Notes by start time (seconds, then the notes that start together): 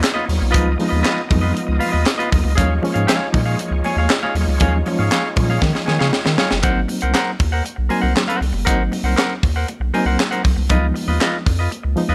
Already playing: B3 D#4 F4 C#5
0.01 muted clean electric guitar stroke, snare, clap, closed hi-hat
0.14 F4 B4 D#5, high conga
0.26 D#2, muted clean electric guitar stroke, open hi-hat, low conga
0.39 B1, muted clean electric guitar stroke, high conga
0.51 C#2 F3 G#3 F4 B4 D#5, kick, closed hi-hat
0.55 B3 D#4, muted conga, low conga
0.77 F3 G#3 B3, muted clean electric guitar stroke, open hi-hat, muted conga, high conga
0.81 D#4
0.89 D#2 F4 B4 D#5
1.03 F4 B4 D#5, snare, clap, closed hi-hat
1.27 F2 F3 G#3, muted clean electric guitar stroke, kick, open hi-hat, muted conga, low conga
1.31 B3 D#4
1.41 F4 B4 D#5
1.54 muted clean electric guitar stroke, closed hi-hat, high conga
1.67 C#2, muted clean electric guitar stroke
1.79 F4 B4 F5, open hi-hat, muted conga, high conga
1.92 D#2 F4 B4 D#5
2.06 muted clean electric guitar stroke, snare, clap, closed hi-hat
2.18 F4 B4 D#5, closed hi-hat, high conga
2.31 D#2, muted clean electric guitar stroke, kick, open hi-hat, muted conga, low conga
2.44 C#2, muted clean electric guitar stroke, high conga
2.55 D#2 F3 G#3 A#3 C#4 D#4 F4 G#4 C#5 F5, kick, closed hi-hat, muted conga, low conga
2.82 F3 G#3 A#3 C#4, muted clean electric guitar stroke, open hi-hat, muted conga, high conga
2.94 G#2 G#4 C#5 F5, closed hi-hat
3.07 G#4 C#5 F5, snare, clap, closed hi-hat, muted conga
3.32 A#2 F3 G#3 A#3 D#4, muted clean electric guitar stroke, kick, open hi-hat, muted conga, low conga
3.46 G#4 C#5 F5
3.59 muted clean electric guitar stroke, closed hi-hat, high conga
3.71 C#2, muted clean electric guitar stroke
3.84 G#4 C#5 G#5, open hi-hat, muted conga, high conga
3.96 D#2 G#4 C#5 F5
4.10 muted clean electric guitar stroke, snare, clap, closed hi-hat
4.23 G#4 C#5 F5, high conga
4.35 D#2, muted clean electric guitar stroke, open hi-hat, low conga
4.47 C#2, muted clean electric guitar stroke, high conga
4.60 D#2 F3 G#3 A#3 C#4 G#4 C#5 F5, kick, closed hi-hat, muted conga, low conga
4.86 F3 G#3 A#3 C#4, muted clean electric guitar stroke, open hi-hat, muted conga, high conga
4.99 G#2 G#4 C#5 F5
5.11 G#4 C#5 F5, snare, clap, closed hi-hat
5.36 A#2 F3 G#3 A#3 C#4, muted clean electric guitar stroke, kick, open hi-hat, low conga
5.50 G#4 C#5 F5
5.62 D#3, muted clean electric guitar stroke, kick, snare, high conga
5.73 muted clean electric guitar stroke, snare
5.86 D#3 G#4 C#5 G#5, snare, muted conga, high conga
5.99 C#3 G#4 C#5 F5, snare
6.12 muted clean electric guitar stroke, snare, muted conga
6.25 D#3, muted clean electric guitar stroke, snare, high conga
6.38 G#4 C#5 F5, snare, low conga
6.51 F#1, muted clean electric guitar stroke, snare, high conga
6.62 G#1 F#3 A#3 C4 D#4 A#4 C5 F#5, kick, closed hi-hat, muted conga, low conga
6.88 muted clean electric guitar stroke, open hi-hat, muted conga, high conga
7.01 C2 A#4 C5 F#5, closed hi-hat
7.14 A#4 C5 F#5, snare, clap, closed hi-hat, muted conga
7.39 D#2, muted clean electric guitar stroke, kick, open hi-hat, muted conga
7.52 A#4 C5 F#5
7.64 muted clean electric guitar stroke, closed hi-hat, muted conga, high conga
7.76 B1, muted clean electric guitar stroke
7.89 F#3 A#3 C4 D#4 A#4 C5 G#5, open hi-hat, muted conga, high conga
8.02 C2 A#4 C5 F#5
8.15 muted clean electric guitar stroke, snare, clap, closed hi-hat
8.27 A#4 C5 F#5, closed hi-hat, high conga
8.41 C2, muted clean electric guitar stroke, open hi-hat, low conga
8.53 F#1, muted clean electric guitar stroke, high conga
8.65 G#1 F#3 A#3 C4 D#4 A#4 C5 F#5, kick, closed hi-hat, muted conga, low conga
8.92 muted clean electric guitar stroke, open hi-hat, muted conga, high conga
9.03 C2 A#4 C5 F#5
9.16 A#4 C5 F#5, snare, clap, closed hi-hat, muted conga
9.43 D#2, muted clean electric guitar stroke, kick, open hi-hat, muted conga
9.56 A#4 C5 F#5
9.68 muted clean electric guitar stroke, closed hi-hat, muted conga, high conga
9.80 B1, muted clean electric guitar stroke
9.93 F#3 A#3 C4 D#4 A#4 C5 G#5, open hi-hat, muted conga, high conga
10.05 C2 A#4 C5 F#5
10.20 snare, clap, closed hi-hat, muted conga
10.31 A#4 C5 F#5, closed hi-hat, high conga
10.43 C2, muted clean electric guitar stroke, kick, open hi-hat, low conga
10.56 C2, muted clean electric guitar stroke, high conga
10.70 C#2 F3 G#3 B3 D#4 F4 B4 D#5, kick, closed hi-hat, muted conga, low conga
10.94 muted clean electric guitar stroke, open hi-hat, muted conga, high conga
11.08 D#2 F4 B4 D#5
11.20 F4 B4 D#5, snare, clap, closed hi-hat, muted conga
11.46 F2, muted clean electric guitar stroke, kick, open hi-hat, muted conga
11.59 F4 B4 D#5
11.71 muted clean electric guitar stroke, closed hi-hat, muted conga, high conga
11.83 C#2, muted clean electric guitar stroke
11.96 F3 G#3 B3 D#4, open hi-hat, muted conga, high conga
12.09 D#2 F4 B4 D#5